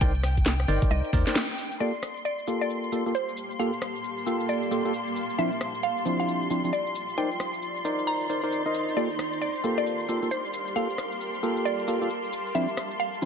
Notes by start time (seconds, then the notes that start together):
Already playing: G5
0.01 C2 D#4 A#4 C5 D5 G5, kick, cabasa
0.15 closed hi-hat, cabasa
0.23 cross-stick, open hi-hat, cabasa
0.37 kick, closed hi-hat, cabasa
0.46 snare, cabasa
0.60 cross-stick, closed hi-hat, cabasa
0.68 G1 D#4 A#4 C5 D5, open hi-hat, cabasa
0.82 kick, closed hi-hat, cabasa
0.91 C2 D#5, cabasa
1.05 closed hi-hat, cabasa
1.13 D#2 D#4 A#4 C5 D5, kick, open hi-hat, cabasa
1.27 D#4 A#4 C5 D5, snare, closed hi-hat, cabasa
1.35 snare, cabasa
1.49 closed hi-hat, cabasa
1.58 open hi-hat, cabasa
1.72 closed hi-hat, cabasa
1.80 A#3 F4 G4 A4 D5 C6, cabasa
1.94 cabasa
2.03 cross-stick, cabasa
2.13 A#3, cabasa
2.18 F5
2.25 D5, cabasa
2.39 cabasa
2.47 A#3 F4 G4 A4, cabasa
2.61 D5 A5, cabasa
2.70 cabasa
2.84 cabasa
2.92 A#3 F4 G4 A4, cabasa
3.06 A#3 F4 G4 A4, cabasa
3.15 C5, cabasa
3.29 cabasa
3.37 cabasa
3.51 cabasa
3.59 A#3 F4 G4 A4 F5, cabasa
3.73 cabasa
3.82 cross-stick, cabasa
3.96 cabasa
4.04 cabasa
4.18 cabasa
4.27 A#3 F4 G4 A4, cabasa
4.40 cabasa
4.49 D5, cabasa
4.63 cabasa
4.71 A#3 F4 G4 A4, cabasa
4.85 A#3 F4 G4 A4, cabasa
4.94 cabasa
5.08 cabasa
5.16 cabasa
5.30 cabasa
5.38 F3 C4 D4 E4 F4 E5, cabasa
5.52 cabasa
5.59 D5, cross-stick, cabasa
5.75 cabasa
5.83 F5, cabasa
5.97 cabasa
6.06 F3 C4 D4 E4, cabasa
6.10 C6
6.20 F5, cabasa
6.28 cabasa
6.42 cabasa
6.50 F3 C4 D4 E4, cabasa
6.64 F3 C4 D4 E4, cabasa
6.73 D5, cabasa
6.87 cabasa
6.95 D#4, cabasa
7.02 C5
7.09 cabasa
7.18 D#4 A#4 C5 D5 G5, cabasa
7.31 cabasa
7.40 cross-stick, cabasa
7.49 A#5
7.54 cabasa
7.62 cabasa
7.76 cabasa
7.85 D#4 A#4 C5 D5, cabasa
7.99 cabasa
8.07 A#5, cabasa
8.21 cabasa
8.29 D#4 A#4 C5 D5, cabasa
8.43 D#4 A#4 C5 D5, cabasa
8.52 cabasa
8.66 D#4 A#4 C5 D#5, cabasa
8.74 cabasa
8.88 cabasa
8.97 A#3 F4 G4 A4 D5, cabasa
9.04 A#4
9.11 cabasa
9.19 cross-stick, cabasa
9.33 F5, cabasa
9.41 D5, cabasa
9.55 cabasa
9.64 A#3 F4 G4 A4, cabasa
9.78 D5, cabasa
9.86 cabasa
10.00 A5, cabasa
10.09 A#3 F4 G4 A4, cabasa
10.22 A#3 F4 G4 A4, cabasa
10.31 C5, cabasa
10.45 cabasa
10.53 cabasa
10.67 cabasa
10.76 A#3 F4 G4 A4 F5, cabasa
10.90 cabasa
10.98 cross-stick, cabasa
11.12 cabasa
11.21 cabasa
11.35 cabasa
11.43 A#3 F4 G4 A4, cabasa
11.57 cabasa
11.65 D5, cabasa
11.79 cabasa
11.88 A#3 F4 G4 A4, cabasa
12.02 A#3 F4 G4 A4, cabasa
12.10 cabasa
12.24 cabasa
12.32 cabasa
12.46 cabasa
12.55 F3 C4 D4 E4 F4 E5, cabasa
12.69 cabasa
12.77 cross-stick, cabasa
12.91 cabasa
13.00 F5, cabasa
13.14 cabasa
13.22 F3 C4 D4 E4, cabasa